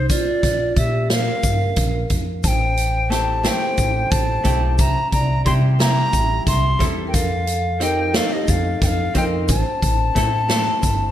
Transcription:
0.09 upright bass A#1, vibraphone F4, flute D5, kick, closed hi-hat, shaker
0.43 upright bass A#1, kick, snare, closed hi-hat
0.77 upright bass A#2, vibraphone G4, flute E5, kick, closed hi-hat
1.10 vibraphone A#4, flute F5, snare, closed hi-hat
1.43 upright bass G1, kick, closed hi-hat, shaker
1.76 upright bass A#1, kick, closed hi-hat
2.10 upright bass F2, kick, closed hi-hat
2.44 upright bass A1, vibraphone C5, flute A5, kick, closed hi-hat, shaker
2.48 flute G5
2.77 closed hi-hat, shaker
3.10 hollow-body jazz guitar A3 C4 E4 G4, vibraphone C5, flute A5, snare, closed hi-hat
3.43 hollow-body jazz guitar A3 C4 E4 G4, vibraphone C5, flute A5, snare, closed hi-hat, shaker
3.49 flute G5
3.77 upright bass A1, kick, closed hi-hat, shaker
4.11 upright bass A1, vibraphone C5, flute A5, kick, closed hi-hat, shaker
4.44 upright bass B1, hollow-body jazz guitar A3 C4 E4 G4, kick, closed hi-hat
4.79 upright bass C2, vibraphone E5, flute A#5, kick, closed hi-hat, shaker
5.12 upright bass C2, vibraphone D5, flute A#5, kick, closed hi-hat, shaker
5.45 upright bass C3, hollow-body jazz guitar G3 C4 E4 G4, vibraphone E5, flute C6, kick, closed hi-hat
5.79 hollow-body jazz guitar G3 C4 E4 G4, vibraphone E5, flute A#5, snare, closed hi-hat, shaker
6.13 upright bass A1, kick, closed hi-hat, shaker
6.47 upright bass C2, vibraphone E5, flute C6, kick, closed hi-hat, shaker
6.79 upright bass E2, hollow-body jazz guitar G3 C4 E4 A4, kick, closed hi-hat
7.07 vibraphone A#4, flute G5
7.14 upright bass F2, vibraphone A4, flute F5, kick, closed hi-hat, shaker
7.47 closed hi-hat, shaker
7.80 hollow-body jazz guitar F3 C4 D#4 G4, vibraphone A#4, flute G5, closed hi-hat
8.14 hollow-body jazz guitar A3 C4 D#4 A4, vibraphone A4, flute F5, snare, closed hi-hat, shaker
8.33 vibraphone G4, flute D#5
8.48 upright bass F2, vibraphone A4, flute F5, kick, closed hi-hat, shaker
8.82 upright bass F2, vibraphone A4, flute G5, kick, snare, closed hi-hat, shaker
8.86 flute F5
9.15 upright bass F2, hollow-body jazz guitar F3 C4 D#4 F4, vibraphone A#4, flute G5, kick, closed hi-hat
9.48 upright bass A1, vibraphone C5, flute A5, kick, closed hi-hat, shaker
9.82 upright bass A1, kick, closed hi-hat, shaker
10.15 upright bass A2, hollow-body jazz guitar A3 C4 E4 A4, kick, snare, closed hi-hat
10.49 hollow-body jazz guitar A3 C4 E4 A4, snare, closed hi-hat
10.83 upright bass G1, kick, closed hi-hat, shaker

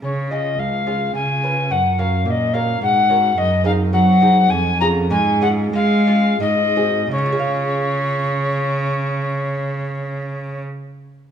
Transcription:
0.02 lute C#3, cello C#3, recorder C#5
0.30 lute C#4 F4 G#4, recorder D#5
0.59 cello C#2, recorder F5
0.86 lute C#4 F4 G#4
1.14 lute C#3, cello C#3, recorder G#5
1.43 lute C#4 F4 B4
1.71 cello F#2, lute F#2, recorder F#5
1.98 lute C#4 F#4 A#4, recorder F5
2.25 lute A#2, cello A#2, recorder F5
2.30 recorder D#5
2.53 lute C#4 F#4 A#4, recorder F5
2.81 lute G#2, cello G#2, recorder F#5
3.10 lute C#4 F#4 A#4
3.37 lute F#2, cello F#2, recorder D#5
3.64 lute C4 D#4 G#4, recorder F5
3.93 lute F#3, cello F#3, recorder F#5
4.21 lute C4 D#4 G#4
4.50 lute F2, cello F2, recorder G#5
4.80 lute C#4 F4 G#4, recorder A#5
5.10 cello G#2, lute G#2 G#3, recorder G#5
5.41 lute C#4 F4 G#4, recorder F#5
5.73 cello G#3, lute G#3, recorder F5
6.07 lute C#4 F4 G#4
6.40 lute G#2 G#3, cello G#2, recorder D#5
6.76 lute C4 F#4 G#4
7.11 cello C#3, lute C#3, recorder C#5
7.18 lute C#4
7.26 lute F4
7.32 lute G#4
7.39 lute F5

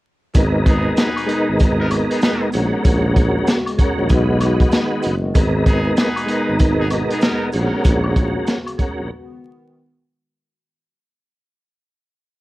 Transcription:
0.33 tuba G#1, analog synth pad B2 G#3 B3 D#4, tonewheel organ G#3 B3 D#4 A#4, kick, closed hi-hat, maracas
0.65 trumpet section B3 D#4 G#4, kick, closed hi-hat, maracas
0.96 trumpet section D#4 G#4 B4, snare, closed hi-hat, maracas
1.16 closed hi-hat, high woodblock
1.26 tonewheel organ G#3 B3 D#4 A#4, closed hi-hat, maracas
1.49 tuba G#1
1.59 kick, closed hi-hat, maracas
1.79 trumpet section B3 D#4 A#4
1.90 tonewheel organ G#3 B3 D#4 A#4, closed hi-hat, high woodblock, maracas
2.11 trumpet section B3 D#4 G#4, closed hi-hat
2.21 trumpet section D#4 G#4 B4, snare, closed hi-hat, maracas
2.51 tuba A#1, analog synth pad C#3 F#4, tonewheel organ G#3 C#4 F#4, closed hi-hat, maracas
2.55 tonewheel organ A#4
2.82 tuba A#1, tonewheel organ G#3 C#4 F#4 A#4, kick, closed hi-hat, maracas
3.16 kick, closed hi-hat, maracas
3.47 snare, closed hi-hat, maracas
3.66 closed hi-hat, high woodblock
3.78 tonewheel organ G#3 C#4 F#4 A#4, kick, closed hi-hat, maracas
3.99 tuba A#1
4.08 tuba B1, analog synth pad D#3 B3, tonewheel organ G#3 D#4 F#4 B4, kick, closed hi-hat, maracas
4.39 tonewheel organ G#3 D#4 F#4 B4, closed hi-hat, high woodblock, maracas
4.60 kick, closed hi-hat
4.71 snare, closed hi-hat, maracas
5.02 tuba F#1, closed hi-hat, maracas
5.34 tuba G#1, analog synth pad B2 B3 D#4, tonewheel organ G#3 B3 D#4 A#4, kick, closed hi-hat, maracas
5.65 trumpet section B3 D#4 G#4, kick, closed hi-hat, maracas
5.97 trumpet section D#4 G#4 B4, snare, closed hi-hat, maracas
6.16 closed hi-hat, high woodblock
6.26 tonewheel organ G#3 B3 D#4 A#4, closed hi-hat, maracas
6.49 tuba G#1
6.59 kick, closed hi-hat, maracas
6.79 trumpet section B3 D#4 G#4
6.90 tonewheel organ G#3 B3 D#4 A#4, closed hi-hat, high woodblock, maracas
7.10 trumpet section B3 D#4 G#4, closed hi-hat
7.21 trumpet section B3 D#4 A#4, snare, closed hi-hat, maracas
7.52 tuba A#1, analog synth pad C#3 F#4, tonewheel organ G#3 C#4 F#4 A#4, closed hi-hat, maracas
7.82 tuba A#1, tonewheel organ G#3 C#4 F#4 A#4, kick, closed hi-hat, maracas
8.04 high woodblock
8.16 kick, closed hi-hat, maracas
8.47 snare, closed hi-hat, maracas
8.66 closed hi-hat, high woodblock
8.78 tonewheel organ G#3 C#4 F#4 A#4, kick, closed hi-hat, maracas
8.99 tuba A#1
9.07 analog synth pad D#3 B3

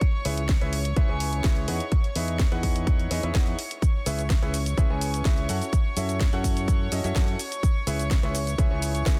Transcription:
Already playing: violin section C#5 C#6
0.01 kick, closed hi-hat
0.25 fingered electric bass C#2, upright piano C#4 E4 G#4 B4 E5, open hi-hat
0.38 closed hi-hat
0.49 kick, snare, closed hi-hat
0.61 fingered electric bass C#2, upright piano C#4 E4 G#4 B4 E5, closed hi-hat
0.73 open hi-hat
0.85 closed hi-hat
0.96 fingered electric bass C#2, upright piano C#4 E4 G#4 B4 E5, kick, closed hi-hat
1.09 fingered electric bass C#2, upright piano C#4 E4 G#4 B4 G#5
1.20 open hi-hat
1.33 closed hi-hat
1.44 fingered electric bass C#2, upright piano C#4 E4 G#4 B4 E5, kick, snare, closed hi-hat
1.57 closed hi-hat
1.68 fingered electric bass E2, upright piano D#4 E4 G#4 B4 F#5, open hi-hat
1.80 closed hi-hat
1.92 kick, closed hi-hat
2.04 closed hi-hat
2.16 fingered electric bass E2, upright piano D#4 E4 G#4 B4 E5, open hi-hat
2.28 closed hi-hat
2.39 kick, snare, closed hi-hat
2.52 fingered electric bass E2, upright piano D#4 E4 G#4 B4 F#5, closed hi-hat
2.63 kick, open hi-hat
2.76 closed hi-hat
2.87 kick, closed hi-hat
2.99 closed hi-hat
3.11 fingered electric bass E2, upright piano D#4 E4 G#4 B4 D#5, open hi-hat
3.23 fingered electric bass E2, upright piano D#4 E4 G#4 B4 E5, closed hi-hat
3.35 fingered electric bass E2, upright piano E4 G#4 B4 F#5, kick, snare, closed hi-hat
3.47 closed hi-hat
3.59 open hi-hat
3.71 closed hi-hat
3.82 violin section C#5 C#6, kick, closed hi-hat, shaker
4.06 fingered electric bass C#2, upright piano C#4 E4 G#4 B4 E5, open hi-hat, shaker
4.19 closed hi-hat, shaker
4.30 kick, snare, closed hi-hat, shaker
4.42 fingered electric bass C#2, upright piano C#4 E4 G#4 B4 E5, closed hi-hat
4.54 open hi-hat, shaker
4.66 closed hi-hat, shaker
4.78 fingered electric bass C#2, upright piano C#4 E4 G#4 B4 E5, kick, closed hi-hat, shaker
4.90 fingered electric bass C#2, upright piano C#4 E4 G#4 B4 G#5
5.01 open hi-hat, shaker
5.14 closed hi-hat, shaker
5.25 fingered electric bass C#2, upright piano C#4 E4 G#4 B4 E5, kick, snare, closed hi-hat, shaker
5.38 closed hi-hat
5.49 fingered electric bass F#2, upright piano C#4 E4 F#4 A4 F#5, open hi-hat, shaker
5.62 closed hi-hat, shaker
5.73 kick, closed hi-hat, shaker
5.97 fingered electric bass F#2, upright piano C#4 E4 F#4 A4 E5, open hi-hat, shaker
6.09 closed hi-hat, shaker
6.20 kick, snare, closed hi-hat, shaker
6.33 fingered electric bass F#2, upright piano C#4 E4 F#4 A4 F#5, closed hi-hat
6.44 kick, open hi-hat, shaker
6.57 closed hi-hat, shaker
6.68 kick, closed hi-hat, shaker
6.92 fingered electric bass F#2, upright piano C#4 E4 F#4 A4 D#5, open hi-hat, shaker
7.04 fingered electric bass F#2, upright piano C#4 E4 F#4 A4 E5, closed hi-hat, shaker
7.16 fingered electric bass F#2, upright piano C#4 E4 F#4 A4 F#5, kick, snare, closed hi-hat, shaker
7.28 closed hi-hat
7.39 open hi-hat, shaker
7.52 closed hi-hat, shaker
7.63 kick, closed hi-hat, shaker
7.87 fingered electric bass C#2, upright piano C#4 E4 G#4 B4 E5, open hi-hat, shaker
7.99 closed hi-hat, shaker
8.11 kick, snare, closed hi-hat, shaker
8.23 fingered electric bass C#2, upright piano C#4 E4 G#4 B4 E5, closed hi-hat
8.35 open hi-hat, shaker
8.47 closed hi-hat, shaker
8.58 fingered electric bass C#2, upright piano C#4 E4 G#4 B4 E5, kick, closed hi-hat, shaker
8.71 fingered electric bass C#2, upright piano C#4 E4 G#4 B4 G#5
8.82 open hi-hat, shaker
8.95 closed hi-hat, shaker
9.06 fingered electric bass C#2, upright piano C#4 E4 G#4 B4 E5, kick, snare, closed hi-hat, shaker

